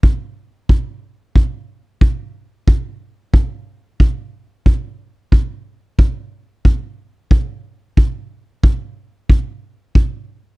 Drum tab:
BD |o-o-o-o-|o-o-o-o-|o-o-o-o-|o-o-o-o-|